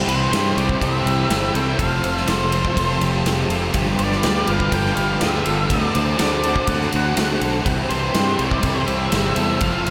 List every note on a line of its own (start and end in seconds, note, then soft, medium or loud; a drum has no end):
0.00 0.31 C3 medium
0.00 0.31 E3 medium
0.00 0.31 G3 medium
0.00 0.33 C4 loud
0.00 3.70 C5 medium
0.00 1.76 G5 medium
0.00 1.76 B5 medium
0.00 3.71 E6 medium
0.07 0.26 C2 medium
0.07 0.31 G3 medium
0.07 0.33 C4 medium
0.07 0.34 E4 medium
0.07 0.32 B4 medium
0.07 0.58 C5 medium
0.07 ride medium
0.30 0.51 G2 medium
0.30 0.78 C3 medium
0.30 0.80 E3 medium
0.30 0.57 G3 medium
0.30 0.57 C4 medium
0.30 0.56 E4 medium
0.30 0.56 G4 medium
0.30 snare medium
0.30 ride medium
0.56 0.75 C2 medium
0.56 0.80 G3 soft
0.56 0.81 C4 medium
0.56 0.81 E4 medium
0.56 2.03 C5 medium
0.56 0.80 D5 medium
0.56 ride medium
0.69 kick medium
0.80 1.00 C2 medium
0.80 1.29 C3 medium
0.80 1.28 E3 medium
0.80 1.06 G3 medium
0.80 1.06 C4 medium
0.80 1.04 E4 medium
0.80 1.05 A4 medium
0.80 1.54 E5 medium
0.80 kick medium
0.80 ride medium
1.05 1.25 C2 medium
1.05 1.28 G3 medium
1.05 1.29 C4 medium
1.05 1.30 E4 medium
1.05 1.29 G4 medium
1.05 ride medium
1.29 1.49 G1 medium
1.29 1.76 C3 medium
1.29 1.77 E3 medium
1.29 1.55 G3 medium
1.29 1.54 C4 medium
1.29 1.53 E4 medium
1.29 1.54 G4 medium
1.29 snare medium
1.29 ride medium
1.54 1.73 C2 medium
1.54 1.78 G3 medium
1.54 1.78 C4 medium
1.54 1.77 E4 medium
1.54 1.78 A4 medium
1.54 1.79 G5 loud
1.54 ride medium
1.78 1.98 F1 medium
1.78 2.25 F2 medium
1.78 2.27 C3 loud
1.78 2.27 F3 medium
1.78 2.04 A3 medium
1.78 2.03 C4 loud
1.78 5.67 F4 medium
1.78 2.02 F4 medium
1.78 2.03 A4 medium
1.78 2.16 F5 loud
1.78 3.73 A5 medium
1.78 kick loud
1.78 ride loud
2.02 2.22 F1 medium
2.02 2.27 A3 medium
2.02 2.28 C4 medium
2.02 2.29 F4 medium
2.02 2.27 C5 medium
2.02 ride medium
2.16 2.29 E5 loud
2.16 snare soft
2.26 2.66 F1 medium
2.26 2.75 F2 medium
2.26 2.76 C3 medium
2.26 2.76 F3 medium
2.26 2.52 A3 medium
2.26 2.51 C4 medium
2.26 2.51 F4 medium
2.26 2.52 A4 medium
2.26 2.97 C5 medium
2.26 snare loud
2.26 ride medium
2.52 2.76 A3 medium
2.52 2.76 C4 medium
2.52 2.77 F4 medium
2.52 2.77 C5 medium
2.52 ride medium
2.65 kick medium
2.76 2.96 F1 medium
2.76 3.22 F2 medium
2.76 3.24 C3 medium
2.76 3.23 F3 medium
2.76 3.02 A3 medium
2.76 3.02 C4 medium
2.76 3.01 F4 medium
2.76 3.01 A4 medium
2.76 kick medium
2.76 ride medium
3.01 3.20 F1 medium
3.01 3.24 A3 medium
3.01 3.25 C4 medium
3.01 3.26 F4 medium
3.01 3.26 G4 medium
3.01 ride medium
3.24 3.44 F1 medium
3.24 3.72 F2 medium
3.24 3.73 C3 medium
3.24 3.72 F3 medium
3.24 3.51 A3 medium
3.24 3.50 C4 medium
3.24 3.48 F4 medium
3.24 3.50 G4 medium
3.24 snare loud
3.24 ride medium
3.49 3.69 F1 medium
3.49 3.74 A3 medium
3.49 3.73 C4 medium
3.49 3.73 F4 medium
3.49 3.75 A4 medium
3.49 ride medium
3.74 3.93 G1 medium
3.74 4.23 G2 medium
3.74 4.21 D3 loud
3.74 3.99 F3 loud
3.74 4.25 G3 medium
3.74 3.98 B3 medium
3.74 3.96 F4 medium
3.74 3.99 G4 medium
3.74 5.68 B4 medium
3.74 5.68 G5 medium
3.74 5.68 D6 medium
3.74 kick loud
3.74 ride medium
3.98 4.18 G1 medium
3.98 4.22 F3 medium
3.98 4.22 B3 medium
3.98 4.23 F4 medium
3.98 4.24 B4 medium
3.98 4.49 D5 medium
3.98 ride medium
4.12 snare soft
4.22 4.43 D2 medium
4.22 4.70 G2 medium
4.22 4.71 D3 medium
4.22 4.47 F3 medium
4.22 4.73 G3 medium
4.22 4.47 B3 medium
4.22 4.45 F4 medium
4.22 4.48 G4 medium
4.22 snare loud
4.22 ride medium
4.47 4.67 G1 medium
4.47 4.71 F3 medium
4.47 4.72 B3 medium
4.47 4.72 F4 medium
4.47 4.73 B4 medium
4.47 4.73 F5 medium
4.47 ride medium
4.60 kick medium
4.71 4.91 G1 medium
4.71 5.21 G2 medium
4.71 5.19 D3 medium
4.71 4.98 F3 medium
4.71 5.22 G3 medium
4.71 4.97 B3 medium
4.71 4.96 F4 loud
4.71 4.96 A4 medium
4.71 4.95 G5 medium
4.71 kick medium
4.71 ride medium
4.85 snare soft
4.96 5.16 G1 medium
4.96 5.20 F3 medium
4.96 5.20 B3 medium
4.96 5.21 F4 medium
4.96 5.20 G4 medium
4.96 5.19 F5 medium
4.96 ride medium
5.20 5.40 D2 medium
5.20 5.68 G2 medium
5.20 5.68 D3 medium
5.20 5.46 F3 medium
5.20 5.70 G3 medium
5.20 5.45 B3 medium
5.20 5.44 F4 medium
5.20 5.45 G4 medium
5.20 5.71 E5 medium
5.20 snare loud
5.20 ride medium
5.45 5.65 G1 medium
5.45 5.69 F3 medium
5.45 5.69 B3 medium
5.45 5.68 F4 medium
5.45 5.69 A4 medium
5.45 ride medium
5.68 5.89 D2 medium
5.68 6.17 D3 medium
5.68 5.95 A3 medium
5.68 5.94 C4 loud
5.68 5.92 F#4 loud
5.68 5.94 A4 medium
5.68 7.63 C5 medium
5.68 6.16 D5 medium
5.68 7.64 F#5 medium
5.68 7.65 A5 medium
5.68 7.65 D6 medium
5.68 kick loud
5.68 ride medium
5.73 6.19 D4 medium
5.93 6.14 D2 medium
5.93 6.17 A3 medium
5.93 6.19 C4 medium
5.93 6.19 F#4 medium
5.93 6.44 C5 medium
5.93 ride medium
6.17 6.57 D2 medium
6.17 6.66 D3 medium
6.17 6.43 A3 medium
6.17 6.43 C4 medium
6.17 6.68 D4 medium
6.17 6.41 F#4 medium
6.17 6.44 A4 medium
6.17 6.68 D5 medium
6.17 snare loud
6.17 ride medium
6.43 6.67 A3 medium
6.43 6.69 C4 medium
6.43 6.68 F#4 medium
6.43 6.95 C5 medium
6.43 ride medium
6.56 kick medium
6.67 6.87 D2 medium
6.67 7.15 D3 medium
6.67 6.93 A3 medium
6.67 6.93 C4 medium
6.67 7.17 D4 loud
6.67 6.91 F#4 loud
6.67 6.92 A4 medium
6.67 7.37 F#5 medium
6.67 kick medium
6.67 ride medium
6.81 snare soft
6.92 7.12 D2 medium
6.92 7.16 A3 medium
6.92 7.18 C4 medium
6.92 7.16 F#4 medium
6.92 7.18 F#4 medium
6.92 ride medium
7.16 7.36 D2 medium
7.16 7.64 D3 medium
7.16 7.42 A3 medium
7.16 7.42 C4 medium
7.16 7.65 D4 medium
7.16 7.42 F#4 medium
7.16 7.40 F#4 medium
7.16 snare loud
7.16 ride medium
7.41 7.60 B1 medium
7.41 7.65 A3 medium
7.41 7.67 C4 medium
7.41 7.64 F#4 medium
7.41 7.66 A4 medium
7.41 ride medium
7.64 7.85 C2 medium
7.64 8.14 C3 medium
7.64 8.14 E3 medium
7.64 7.91 G3 medium
7.64 7.91 C4 loud
7.64 7.89 E4 loud
7.64 7.91 G4 medium
7.64 9.90 C5 medium
7.64 9.59 G5 medium
7.64 9.59 B5 medium
7.64 9.90 E6 medium
7.64 kick loud
7.64 ride medium
7.89 8.10 C2 medium
7.89 8.13 G3 medium
7.89 8.15 C4 medium
7.89 8.16 E4 medium
7.89 8.15 B4 medium
7.89 8.40 C5 medium
7.89 ride medium
8.13 8.34 G2 medium
8.13 8.61 C3 medium
8.13 8.64 E3 medium
8.13 8.40 G3 medium
8.13 8.40 C4 medium
8.13 8.38 E4 medium
8.13 8.39 G4 medium
8.13 snare loud
8.13 ride medium
8.38 8.58 C2 medium
8.38 8.63 G3 medium
8.38 8.63 C4 medium
8.38 8.64 E4 medium
8.38 9.86 C5 medium
8.38 8.86 D5 medium
8.38 ride medium
8.51 kick medium
8.63 8.83 C2 medium
8.63 9.12 C3 medium
8.63 9.10 E3 medium
8.63 8.89 G3 medium
8.63 8.88 C4 medium
8.63 8.87 E4 medium
8.63 8.86 A4 medium
8.63 kick medium
8.63 ride medium
8.86 9.07 C2 medium
8.86 9.12 C4 medium
8.86 9.12 E4 medium
8.86 9.11 G4 medium
8.86 9.61 E5 medium
8.86 ride medium
8.90 9.11 G3 medium
9.11 9.31 G1 medium
9.11 9.60 C3 medium
9.11 9.60 E3 medium
9.11 9.37 G3 medium
9.11 9.35 C4 medium
9.11 9.34 E4 medium
9.11 9.36 G4 medium
9.11 snare loud
9.11 ride medium
9.35 9.56 E2 medium
9.35 9.61 G3 medium
9.35 9.60 C4 medium
9.35 9.59 E4 medium
9.35 9.60 A4 medium
9.35 ride medium
9.60 9.81 F1 medium
9.60 9.90 F2 medium
9.60 9.90 C3 medium
9.60 9.90 F3 medium
9.60 9.85 A3 medium
9.60 9.84 C4 loud
9.60 9.90 F4 medium
9.60 9.84 F4 loud
9.60 9.86 A4 medium
9.60 9.84 F5 loud
9.60 9.90 A5 medium
9.60 kick loud
9.60 ride medium
9.85 9.90 F1 medium
9.85 9.90 A3 medium
9.85 9.90 C4 medium
9.85 9.90 F4 medium
9.85 9.90 C5 medium
9.85 9.90 F5 loud
9.85 ride medium